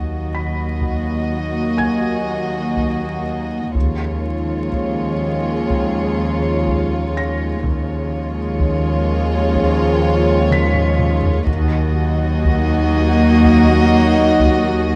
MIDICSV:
0, 0, Header, 1, 11, 480
1, 0, Start_track
1, 0, Key_signature, -6, "minor"
1, 0, Tempo, 977199
1, 1842, Time_signature, 4, 2, 24, 8
1, 3280, Tempo, 964630
1, 7399, End_track
2, 0, Start_track
2, 0, Title_t, "Felt piano"
2, 0, Program_c, 0, 0
2, 0, Control_c, 0, 64, 127
2, 169, Note_on_c, 0, 83, 24
2, 170, Note_on_c, 0, 95, 25
2, 872, Note_on_c, 0, 80, 31
2, 875, Note_on_c, 0, 92, 43
2, 1586, Note_off_c, 0, 83, 0
2, 1586, Note_off_c, 0, 95, 0
2, 1851, Control_c, 0, 64, 0
2, 1932, Control_c, 0, 64, 127
2, 2298, Note_off_c, 0, 80, 0
2, 2300, Note_off_c, 0, 92, 0
2, 3526, Note_on_c, 0, 94, 48
2, 4936, Note_off_c, 0, 94, 0
2, 5194, Note_on_c, 0, 95, 63
2, 5676, Control_c, 0, 64, 0
2, 5759, Control_c, 0, 64, 127
2, 6621, Note_off_c, 0, 95, 0
2, 7399, End_track
3, 0, Start_track
3, 0, Title_t, "Violin section"
3, 0, Program_c, 1, 48
3, 5664, Note_on_c, 1, 90, 63
3, 5668, Note_on_c, 1, 87, 61
3, 5668, Note_on_c, 1, 94, 63
3, 7399, Note_off_c, 1, 87, 0
3, 7399, Note_off_c, 1, 90, 0
3, 7399, Note_off_c, 1, 94, 0
3, 7399, End_track
4, 0, Start_track
4, 0, Title_t, "Violin section"
4, 0, Program_c, 2, 48
4, 0, Note_on_c, 2, 75, 50
4, 1819, Note_off_c, 2, 75, 0
4, 1843, Note_on_c, 2, 73, 55
4, 3738, Note_off_c, 2, 73, 0
4, 3758, Note_on_c, 2, 73, 71
4, 5649, Note_off_c, 2, 73, 0
4, 5669, Note_on_c, 2, 75, 86
4, 7399, Note_off_c, 2, 75, 0
4, 7399, End_track
5, 0, Start_track
5, 0, Title_t, "Violin section"
5, 0, Program_c, 3, 48
5, 0, Note_on_c, 3, 66, 43
5, 1824, Note_off_c, 3, 66, 0
5, 1847, Note_on_c, 3, 65, 53
5, 3739, Note_off_c, 3, 65, 0
5, 3755, Note_on_c, 3, 65, 71
5, 5647, Note_off_c, 3, 65, 0
5, 5668, Note_on_c, 3, 66, 81
5, 7399, Note_off_c, 3, 66, 0
5, 7399, End_track
6, 0, Start_track
6, 0, Title_t, "Viola section"
6, 0, Program_c, 4, 48
6, 0, Note_on_c, 4, 58, 52
6, 1821, Note_off_c, 4, 58, 0
6, 1844, Note_on_c, 4, 56, 66
6, 3738, Note_off_c, 4, 56, 0
6, 3756, Note_on_c, 4, 56, 82
6, 5648, Note_off_c, 4, 56, 0
6, 5662, Note_on_c, 4, 58, 107
6, 7399, Note_off_c, 4, 58, 0
6, 7399, End_track
7, 0, Start_track
7, 0, Title_t, "French horn section"
7, 0, Program_c, 5, 60
7, 0, Note_on_c, 5, 54, 52
7, 0, Note_on_c, 5, 58, 45
7, 1757, Note_off_c, 5, 54, 0
7, 1757, Note_off_c, 5, 58, 0
7, 1841, Note_on_c, 5, 61, 59
7, 1842, Note_on_c, 5, 53, 59
7, 3736, Note_off_c, 5, 61, 0
7, 3737, Note_off_c, 5, 53, 0
7, 3747, Note_on_c, 5, 61, 76
7, 3748, Note_on_c, 5, 53, 78
7, 5579, Note_off_c, 5, 53, 0
7, 5579, Note_off_c, 5, 61, 0
7, 5663, Note_on_c, 5, 54, 89
7, 5665, Note_on_c, 5, 63, 89
7, 7399, Note_off_c, 5, 54, 0
7, 7399, Note_off_c, 5, 63, 0
7, 7399, End_track
8, 0, Start_track
8, 0, Title_t, "Cello section"
8, 0, Program_c, 6, 48
8, 0, Note_on_c, 6, 39, 42
8, 1822, Note_off_c, 6, 39, 0
8, 1848, Note_on_c, 6, 39, 54
8, 3740, Note_off_c, 6, 39, 0
8, 3757, Note_on_c, 6, 39, 55
8, 5648, Note_off_c, 6, 39, 0
8, 5668, Note_on_c, 6, 39, 72
8, 7399, Note_off_c, 6, 39, 0
8, 7399, End_track
9, 0, Start_track
9, 0, Title_t, "Double bass section"
9, 0, Program_c, 7, 48
9, 0, Note_on_c, 7, 39, 46
9, 1821, Note_off_c, 7, 39, 0
9, 1839, Note_on_c, 7, 39, 59
9, 3736, Note_off_c, 7, 39, 0
9, 3754, Note_on_c, 7, 39, 75
9, 5646, Note_off_c, 7, 39, 0
9, 5664, Note_on_c, 7, 39, 91
9, 7399, Note_off_c, 7, 39, 0
9, 7399, End_track
10, 0, Start_track
10, 0, Title_t, "Synth drone"
10, 0, Program_c, 8, 95
10, 0, Note_on_c, 8, 39, 62
10, 1824, Note_off_c, 8, 39, 0
10, 1832, Note_on_c, 8, 39, 67
10, 3732, Note_off_c, 8, 39, 0
10, 3754, Note_on_c, 8, 39, 71
10, 5647, Note_off_c, 8, 39, 0
10, 5662, Note_on_c, 8, 39, 79
10, 7399, Note_off_c, 8, 39, 0
10, 7399, End_track
11, 0, Start_track
11, 0, Title_t, "Taiko and cinematic ensemble drums"
11, 399, Note_on_c, 9, 41, 59
11, 448, Note_off_c, 9, 41, 0
11, 881, Note_on_c, 9, 41, 65
11, 930, Note_off_c, 9, 41, 0
11, 1360, Note_on_c, 9, 41, 62
11, 1409, Note_off_c, 9, 41, 0
11, 1842, Note_on_c, 9, 41, 86
11, 1891, Note_off_c, 9, 41, 0
11, 2321, Note_on_c, 9, 41, 61
11, 2370, Note_off_c, 9, 41, 0
11, 2799, Note_on_c, 9, 41, 67
11, 2848, Note_off_c, 9, 41, 0
11, 3278, Note_on_c, 9, 41, 69
11, 3328, Note_off_c, 9, 41, 0
11, 3756, Note_on_c, 9, 41, 89
11, 3806, Note_off_c, 9, 41, 0
11, 4233, Note_on_c, 9, 41, 67
11, 4283, Note_off_c, 9, 41, 0
11, 4711, Note_on_c, 9, 41, 75
11, 4761, Note_off_c, 9, 41, 0
11, 5185, Note_on_c, 9, 47, 87
11, 5235, Note_off_c, 9, 47, 0
11, 5303, Note_on_c, 9, 45, 90
11, 5353, Note_off_c, 9, 45, 0
11, 5426, Note_on_c, 9, 45, 91
11, 5475, Note_off_c, 9, 45, 0
11, 5544, Note_on_c, 9, 43, 103
11, 5594, Note_off_c, 9, 43, 0
11, 5663, Note_on_c, 9, 41, 99
11, 5713, Note_off_c, 9, 41, 0
11, 6150, Note_on_c, 9, 41, 74
11, 6199, Note_off_c, 9, 41, 0
11, 6638, Note_on_c, 9, 41, 74
11, 6688, Note_off_c, 9, 41, 0
11, 7120, Note_on_c, 9, 41, 83
11, 7170, Note_off_c, 9, 41, 0
11, 7399, End_track
0, 0, End_of_file